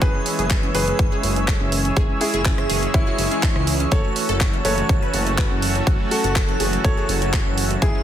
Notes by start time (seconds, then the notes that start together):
Already playing: C#5 E6
0.01 F#1 E3 G#3 C#4 G#4 B4 E5 G#5, kick, closed hi-hat
0.14 C#4
0.26 C#4, open hi-hat
0.39 F#1 G#4, closed hi-hat
0.50 C#4, kick, clap, closed hi-hat
0.63 C#4, closed hi-hat
0.74 F#1 E3 G#3 C#4 G#4 B4, open hi-hat
0.88 C#4, closed hi-hat
0.99 F#1, kick, closed hi-hat
1.12 G#4
1.23 F#1 C#4, open hi-hat
1.36 C#4, closed hi-hat
1.48 A4, kick, cross-stick, clap, closed hi-hat
1.61 F#1 C#4
1.72 open hi-hat
1.85 C#4, closed hi-hat
1.96 F#1 E3 G#3 C#4 G#4, kick, closed hi-hat
2.10 C#4
2.21 C#4 E4 G#4, open hi-hat
2.34 F#1 G#4, closed hi-hat
2.45 C#4, kick, clap, closed hi-hat
2.58 C#4, cross-stick, closed hi-hat
2.69 F#1 E3 G#3 C#4 G#4, open hi-hat
2.83 C#4, closed hi-hat
2.94 F#1 C#4 E4, kick, closed hi-hat
3.07 F#4
3.18 F#1 C#4, open hi-hat
3.31 E3 G#3 C#4 G#4, closed hi-hat
3.43 D4, kick, clap, closed hi-hat
3.56 C#2 C#4, cross-stick
3.67 open hi-hat
3.80 C#4, closed hi-hat
3.92 F#1 E3 A3 C#4 F#4 A4 C#5 F#5 A5, kick, closed hi-hat
4.05 C#4
4.16 C#4, open hi-hat
4.29 F#1 A4, closed hi-hat
4.40 kick, clap, closed hi-hat
4.53 C#4, closed hi-hat
4.65 F#1 E3 A3 C#4 F#4 A4 B4 C#5, open hi-hat
4.78 C#4, closed hi-hat
4.89 F#1 C#4, kick, closed hi-hat
5.02 B4
5.14 F#1 C#4, open hi-hat
5.27 C#4, closed hi-hat
5.38 B4, kick, cross-stick, clap, closed hi-hat
5.51 F#1 C#4
5.62 open hi-hat
5.75 C#4, closed hi-hat
5.87 F#1 E3 A3 C#4 F#4, kick, closed hi-hat
6.00 F#3
6.11 F#3 F#4 A4, open hi-hat
6.24 F#1 F#4, closed hi-hat
6.36 F#3, kick, clap, closed hi-hat
6.49 F#3, closed hi-hat
6.60 F#1 E3 A3 C#4 F#4 G#4, open hi-hat
6.73 F#3, closed hi-hat
6.84 F#1 F#3 A4 C#5, kick, closed hi-hat
6.97 G#4
7.09 F#1 F#3, open hi-hat
7.22 F#3, closed hi-hat
7.33 G#4, kick, clap, closed hi-hat
7.46 F#1 F#3
7.58 open hi-hat
7.71 F#3, closed hi-hat
7.82 F#1 E3 G#3 C#4 E4 G#4 C#5 E5 G#5 E6, kick, closed hi-hat
7.95 C#4